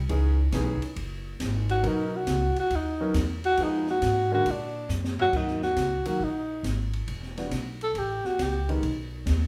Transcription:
Already playing: tenor saxophone G3
0.09 upright bass C#2, grand piano E3 B3 C#4 D#4 G#4, kick, ride
0.52 upright bass B1, grand piano E3 B3 C#4 D#4 G#4, kick, snare, hi-hat pedal, ride
0.81 muted upright bass stroke, ride
0.96 upright bass F#1, kick, ride
1.40 upright bass G#1, kick, snare, hi-hat pedal, ride
1.69 tenor saxophone F#4, ride
1.83 upright bass B1, grand piano F#3 B3 C#4 D#4 A#4, kick, ride
1.88 tenor saxophone D#4
2.16 tenor saxophone F#4
2.27 upright bass C#2, kick, snare, hi-hat pedal, ride
2.56 tenor saxophone F#4, muted upright bass stroke, ride
2.70 upright bass D#2, kick, ride
2.75 tenor saxophone D#4
3.00 grand piano F#3 B3 C#4 D#4 A#4
3.14 upright bass E2, kick, snare, hi-hat pedal, ride
3.44 tenor saxophone F#4, ride
3.57 upright bass F2, grand piano F3 G#3 B3 D#4 G#4, kick, ride
3.63 tenor saxophone D#4
3.87 tenor saxophone F#4, snare
4.02 upright bass G#2, kick, snare, hi-hat pedal, ride
4.31 grand piano D3 G#3 A#3 C#4 F#4, tenor saxophone F#4
4.46 upright bass A#2, kick, ride
4.50 tenor saxophone D4
4.89 upright bass F#2, snare, hi-hat pedal
5.04 snare
5.19 tenor saxophone F#4, floor tom
5.33 upright bass D#2, grand piano D#3 F#3 A#3 C#4 F#4, tenor saxophone D#4, kick, crash
5.47 snare
5.62 tenor saxophone F#4, snare
5.76 upright bass C#2, kick, snare, hi-hat pedal, ride
6.05 grand piano D#3 F#3 A#3 C#4 F#4, tenor saxophone F#4, muted upright bass stroke, ride
6.19 upright bass A#1, kick
6.24 tenor saxophone D#4
6.63 upright bass G#1, kick, snare, hi-hat pedal, ride
6.93 ride
7.07 upright bass E1, kick, ride
7.23 snare
7.37 grand piano E3 G3 B3 D4 F#4, snare, ride
7.51 upright bass B1, kick, snare, hi-hat pedal, ride
7.81 tenor saxophone A4, ride
7.94 upright bass A1, kick, ride
7.98 tenor saxophone G4
8.24 tenor saxophone F#4, muted upright bass stroke, snare
8.39 upright bass C#2, kick, snare, hi-hat pedal, ride
8.43 tenor saxophone G4
8.69 grand piano D#3 G#3 B3 C#4 D#4, ride
8.82 upright bass B1, kick, ride
9.26 upright bass D#2, kick, snare, hi-hat pedal, ride

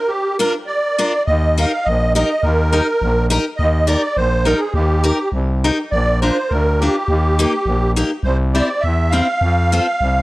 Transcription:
Already playing: accordion A#4
0.08 accordion G4
0.39 steel-string acoustic guitar D4 F4 A#4, accordion A#4
0.67 accordion D5
0.98 steel-string acoustic guitar D4 F4 A#4
1.26 fm bass D#2, accordion D#5
1.58 steel-string acoustic guitar D#4 G4 A#4, accordion F5
1.85 fm bass A#1, accordion D#5
2.15 steel-string acoustic guitar D#4 G4 A#4, accordion D#5
2.43 fm bass D#2, accordion A#4
2.73 steel-string acoustic guitar D#4 G4 A#4
3.02 fm bass A#1
3.30 steel-string acoustic guitar D#4 G4 A#4
3.57 fm bass D#2, accordion D#5
3.86 steel-string acoustic guitar D#4 G4 A#4, accordion D5
4.16 fm bass A#1, accordion C5
4.45 steel-string acoustic guitar D#4 G4 A#4, accordion A#4
4.58 accordion G#4
4.74 fm bass D#2, accordion G4
5.04 steel-string acoustic guitar D#4 G4 A#4
5.32 fm bass C2
5.64 steel-string acoustic guitar D#4 G4 A#4
5.91 fm bass A#1, accordion D5
6.22 steel-string acoustic guitar D4 F4 A#4, accordion C5
6.50 fm bass D2, accordion A#4
6.80 steel-string acoustic guitar D4 F4 A#4, accordion G4
7.08 fm bass D#2
7.39 steel-string acoustic guitar A#3 D#4 G4
7.66 fm bass A#1
7.96 steel-string acoustic guitar A#3 D#4 G4
8.23 fm bass C2, accordion C5
8.53 steel-string acoustic guitar C4 E4 G4, accordion D5
8.81 fm bass E2, accordion E5
9.10 steel-string acoustic guitar C4 E4 G4, accordion F5
9.41 fm bass F2
9.72 steel-string acoustic guitar C4 F4 A4
10.01 fm bass C2

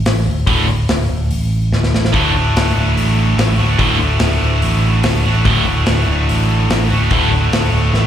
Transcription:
0.06 fingered electric bass A1, snare, open hi-hat
0.27 fingered electric bass D1
0.47 fingered electric bass D1, distorted electric guitar D2 A2 D3, kick, open hi-hat
0.69 fingered electric bass D1
0.89 fingered electric bass D1, snare, open hi-hat
1.10 fingered electric bass D1
1.30 fingered electric bass A1, open hi-hat
1.71 fingered electric bass D1, snare
1.83 snare
1.92 fingered electric bass A1, snare
2.05 snare
2.13 fingered electric bass D1, distorted electric guitar D2 A2 D3 A3 F#4, kick, open hi-hat
2.34 fingered electric bass D1
2.55 fingered electric bass D1, snare, open hi-hat
2.76 fingered electric bass D1
2.96 fingered electric bass A1, open hi-hat
3.38 fingered electric bass A1, snare, open hi-hat
3.57 fingered electric bass D1, distorted electric guitar D2 A2 D3 A3 F#4
3.78 fingered electric bass D1, distorted electric guitar D2 A2 D3 A3 F#4, kick, open hi-hat
4.00 fingered electric bass D1
4.19 fingered electric bass D1, snare, open hi-hat
4.42 fingered electric bass D1
4.62 fingered electric bass A1, open hi-hat
5.03 fingered electric bass D1, snare, open hi-hat
5.25 fingered electric bass A1, distorted electric guitar D2 A2 D3 A3 F#4
5.45 fingered electric bass D1, distorted electric guitar D2 A2 D3 A3 F#4, kick, open hi-hat
5.67 fingered electric bass D1
5.86 fingered electric bass D1, snare, open hi-hat
6.08 fingered electric bass D1
6.29 fingered electric bass A1, open hi-hat
6.70 fingered electric bass A1, snare, open hi-hat
6.90 fingered electric bass D1, distorted electric guitar D2 A2 D3 A3 F#4
7.10 fingered electric bass D1, distorted electric guitar D2 A2 D3 A3 F#4, kick, open hi-hat
7.31 fingered electric bass D1
7.52 fingered electric bass D1, snare, open hi-hat
7.72 fingered electric bass D1
7.92 fingered electric bass A1, snare

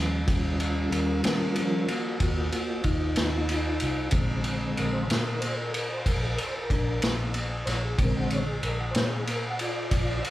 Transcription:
Already playing: fingered electric bass D#2, tonewheel organ F3 G3 C#4
0.25 fingered electric bass D#2, tonewheel organ G3 C#4 F4, kick, ride
0.60 ride
0.89 fingered electric bass D#2, tonewheel organ C#4 A4 A#4, ride
1.24 fingered electric bass D#3, tonewheel organ C#4 A#4, snare, ride
1.56 tonewheel organ F3 G3 C#4, ride
1.60 tonewheel organ A#4
1.88 tonewheel organ A#3 F#4, ride
2.20 fingered electric bass D#2, tonewheel organ A#3 F#4, kick, ride
2.52 tonewheel organ A#3 F#4, ride
2.84 fingered electric bass D#2, tonewheel organ D#4, kick, ride
3.16 fingered electric bass D#2, snare, ride
3.49 ride
3.80 fingered electric bass C2, ride
4.11 fingered electric bass A#1, tonewheel organ D3 G#3 C4, kick, ride
4.44 ride
4.74 tonewheel organ A4, ride
4.79 fingered electric bass A#1, tonewheel organ A#4
4.93 tonewheel organ C5
5.10 fingered electric bass A#2, tonewheel organ A#4, snare, ride
5.28 tonewheel organ A#4
5.40 tonewheel organ C5, ride
5.57 tonewheel organ A#4
5.70 tonewheel organ A4, ride
5.75 tonewheel organ A#4
5.93 tonewheel organ C5
6.06 fingered electric bass A#1, tonewheel organ A#4, kick, ride
6.23 tonewheel organ A4
6.29 tonewheel organ A#4
6.38 tonewheel organ C5, ride
6.57 tonewheel organ A#4
6.70 fingered electric bass A#1, tonewheel organ D4 A#4, kick, ride
7.02 fingered electric bass A#1, snare, ride
7.34 ride
7.66 fingered electric bass A#1, tonewheel organ C5, snare, ride
7.70 tonewheel organ C#5
7.85 tonewheel organ G#4
7.98 fingered electric bass A#1, tonewheel organ D3 G#3, kick, ride
8.03 tonewheel organ C4 A#4
8.17 tonewheel organ F#5
8.26 tonewheel organ C5
8.30 tonewheel organ C#5, ride
8.47 tonewheel organ G#4
8.63 fingered electric bass A#1, tonewheel organ A#4, ride
8.80 tonewheel organ F#5
8.91 tonewheel organ C5, ride
8.95 fingered electric bass A#2, tonewheel organ C#5, snare
9.09 tonewheel organ G#4
9.27 tonewheel organ A#4, ride
9.46 tonewheel organ F#5
9.59 tonewheel organ F4 D5, ride
9.91 fingered electric bass A#1, kick, ride
10.24 ride

